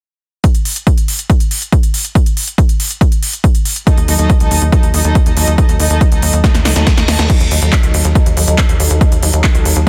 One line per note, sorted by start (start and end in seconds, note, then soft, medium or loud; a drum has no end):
0.44 kick loud
0.44 closed hi-hat medium
0.55 closed hi-hat medium
0.65 open hi-hat loud
0.76 closed hi-hat medium
0.87 kick loud
0.87 closed hi-hat medium
0.98 closed hi-hat medium
1.08 open hi-hat medium
1.19 closed hi-hat medium
1.30 kick loud
1.30 closed hi-hat medium
1.40 closed hi-hat medium
1.51 open hi-hat medium
1.62 closed hi-hat medium
1.72 kick loud
1.72 closed hi-hat medium
1.83 closed hi-hat medium
1.94 open hi-hat loud
2.05 closed hi-hat medium
2.15 kick loud
2.15 closed hi-hat medium
2.26 closed hi-hat medium
2.37 open hi-hat loud
2.48 closed hi-hat medium
2.58 kick loud
2.58 closed hi-hat medium
2.69 closed hi-hat medium
2.80 open hi-hat loud
2.91 closed hi-hat medium
3.01 kick loud
3.01 closed hi-hat medium
3.12 closed hi-hat medium
3.23 open hi-hat loud
3.33 closed hi-hat medium
3.44 kick loud
3.44 closed hi-hat medium
3.55 closed hi-hat medium
3.65 open hi-hat loud
3.76 closed hi-hat medium
3.87 4.02 F#3 medium
3.87 4.02 D#4 medium
3.87 4.02 A4 medium
3.87 4.02 D#5 medium
3.87 kick loud
3.87 closed hi-hat medium
3.97 4.06 D#2 medium
3.97 closed hi-hat medium
4.08 4.17 D#2 loud
4.08 4.16 F#3 medium
4.08 4.16 D#4 medium
4.08 4.16 A4 medium
4.08 4.16 D#5 medium
4.08 open hi-hat loud
4.19 4.28 D#2 medium
4.19 4.34 F#3 medium
4.19 4.34 D#4 medium
4.19 4.34 A4 medium
4.19 4.34 D#5 medium
4.19 closed hi-hat medium
4.30 kick loud
4.30 closed hi-hat medium
4.40 4.49 C#2 medium
4.40 4.55 F#3 medium
4.40 4.55 D#4 medium
4.40 4.55 A4 medium
4.40 4.55 D#5 medium
4.40 closed hi-hat medium
4.51 4.60 D#2 medium
4.51 open hi-hat loud
4.62 4.71 D#2 medium
4.62 closed hi-hat medium
4.72 4.88 F#3 medium
4.72 4.88 D#4 medium
4.72 4.88 A4 medium
4.72 4.88 D#5 medium
4.72 kick loud
4.72 closed hi-hat medium
4.83 4.92 D#2 medium
4.83 closed hi-hat medium
4.94 5.03 D#2 loud
4.94 5.01 F#3 medium
4.94 5.01 D#4 medium
4.94 5.01 A4 medium
4.94 5.01 D#5 medium
4.94 open hi-hat loud
5.04 5.13 D#2 medium
5.04 5.20 F#3 medium
5.04 5.19 D#4 medium
5.04 5.20 A4 medium
5.04 5.20 D#5 medium
5.04 closed hi-hat medium
5.15 kick loud
5.15 closed hi-hat medium
5.26 5.35 D#2 medium
5.26 5.34 F#3 medium
5.26 5.34 D#4 medium
5.26 5.34 A4 medium
5.26 5.34 D#5 medium
5.26 closed hi-hat medium
5.37 5.46 D#2 loud
5.37 5.52 F#3 medium
5.37 5.52 D#4 medium
5.37 5.52 A4 medium
5.37 5.52 D#5 medium
5.37 open hi-hat loud
5.47 5.56 D#2 medium
5.47 closed hi-hat medium
5.58 5.73 F#3 medium
5.58 5.73 D#4 medium
5.58 5.73 A4 medium
5.58 5.73 D#5 medium
5.58 kick loud
5.58 closed hi-hat medium
5.69 5.78 D#2 medium
5.69 closed hi-hat medium
5.79 5.88 D#2 loud
5.79 5.87 F#3 medium
5.79 5.87 D#4 medium
5.79 5.87 A4 medium
5.79 5.87 D#5 medium
5.79 open hi-hat loud
5.90 5.99 D#2 medium
5.90 6.05 F#3 medium
5.90 6.05 D#4 medium
5.90 6.05 A4 medium
5.90 6.05 D#5 medium
5.90 closed hi-hat medium
6.01 kick loud
6.01 closed hi-hat medium
6.12 6.21 C#2 medium
6.12 6.27 F#3 medium
6.12 6.27 D#4 medium
6.12 6.27 A4 medium
6.12 6.27 D#5 medium
6.12 closed hi-hat medium
6.22 6.31 D#2 loud
6.22 open hi-hat loud
6.33 6.42 D#2 medium
6.33 closed hi-hat medium
6.44 6.59 F#3 medium
6.44 6.59 D#4 medium
6.44 6.59 A4 medium
6.44 6.59 D#5 medium
6.44 kick loud
6.44 snare medium
6.44 closed hi-hat medium
6.44 reverse cymbal medium
6.55 6.63 D#2 medium
6.55 snare medium
6.55 closed hi-hat medium
6.65 6.74 C#2 medium
6.65 6.73 F#3 medium
6.65 6.73 D#4 medium
6.65 6.73 A4 medium
6.65 6.73 D#5 medium
6.65 snare medium
6.65 open hi-hat loud
6.76 6.85 D#2 medium
6.76 6.91 F#3 medium
6.76 6.91 D#4 medium
6.76 6.91 A4 medium
6.76 6.91 D#5 medium
6.76 snare medium
6.76 closed hi-hat medium
6.87 kick loud
6.87 snare medium
6.87 closed hi-hat medium
6.97 7.06 D#2 medium
6.97 7.05 F#3 medium
6.97 7.05 D#4 medium
6.97 7.05 A4 medium
6.97 7.05 D#5 medium
6.97 snare medium
6.97 closed hi-hat medium
7.08 7.17 D#2 loud
7.08 7.23 F#3 medium
7.08 7.23 D#4 medium
7.08 7.23 A4 medium
7.08 7.23 D#5 medium
7.08 snare medium
7.08 open hi-hat loud
7.19 7.28 D#2 medium
7.19 snare medium
7.19 closed hi-hat medium
7.30 7.45 F#3 medium
7.30 7.45 D#4 medium
7.30 7.45 A4 medium
7.30 7.45 D#5 medium
7.30 kick loud
7.30 closed hi-hat medium
7.30 crash loud
7.40 7.49 D#2 medium
7.40 closed hi-hat medium
7.51 7.60 D#2 loud
7.51 7.59 F#3 medium
7.51 7.59 D#4 medium
7.51 7.59 A4 medium
7.51 7.59 D#5 medium
7.51 open hi-hat loud
7.62 7.71 D#2 medium
7.62 7.77 F#3 medium
7.62 7.77 D#4 medium
7.62 7.77 A4 medium
7.62 7.77 D#5 medium
7.62 closed hi-hat medium
7.72 kick loud
7.72 clap loud
7.72 closed hi-hat medium
7.83 7.92 C#2 medium
7.83 7.98 F#3 medium
7.83 7.98 D#4 medium
7.83 7.98 A4 medium
7.83 7.98 D#5 medium
7.83 closed hi-hat medium
7.94 8.03 D#2 medium
7.94 open hi-hat loud
8.05 8.13 D#2 medium
8.05 closed hi-hat medium
8.15 8.30 F#3 medium
8.15 8.30 D#4 medium
8.15 8.30 A4 medium
8.15 8.30 D#5 medium
8.15 kick loud
8.15 closed hi-hat medium
8.26 8.35 D#2 medium
8.26 closed hi-hat medium
8.37 8.46 D#2 loud
8.37 8.44 F#3 medium
8.37 8.44 D#4 medium
8.37 8.44 A4 medium
8.37 8.44 D#5 medium
8.37 open hi-hat loud
8.47 8.56 D#2 medium
8.47 8.62 F#3 medium
8.47 8.62 D#4 medium
8.47 8.62 A4 medium
8.47 8.62 D#5 medium
8.47 closed hi-hat medium
8.58 kick loud
8.58 clap loud
8.58 closed hi-hat medium
8.69 8.78 D#2 medium
8.69 8.76 F#3 medium
8.69 8.76 D#4 medium
8.69 8.76 A4 medium
8.69 8.76 D#5 medium
8.69 closed hi-hat medium
8.80 8.88 D#2 loud
8.80 8.95 F#3 medium
8.80 8.95 D#4 medium
8.80 8.95 A4 medium
8.80 8.95 D#5 medium
8.80 open hi-hat loud
8.90 8.99 D#2 medium
8.90 closed hi-hat medium
9.01 9.16 F#3 medium
9.01 9.16 D#4 medium
9.01 9.16 A4 medium
9.01 9.16 D#5 medium
9.01 kick loud
9.01 closed hi-hat medium
9.12 9.21 D#2 medium
9.12 closed hi-hat medium
9.22 9.31 D#2 loud
9.22 9.30 F#3 medium
9.22 9.30 D#4 medium
9.22 9.30 A4 medium
9.22 9.30 D#5 medium
9.22 open hi-hat loud
9.33 9.42 D#2 medium
9.33 9.48 F#3 medium
9.33 9.48 D#4 medium
9.33 9.48 A4 medium
9.33 9.48 D#5 medium
9.33 closed hi-hat medium
9.44 kick loud
9.44 clap loud
9.44 closed hi-hat medium
9.54 9.63 C#2 medium
9.54 9.70 F#3 medium
9.54 9.70 D#4 medium
9.54 9.70 A4 medium
9.54 9.69 D#5 medium
9.54 closed hi-hat medium
9.65 9.74 D#2 loud
9.65 open hi-hat loud
9.76 9.85 D#2 medium
9.76 closed hi-hat medium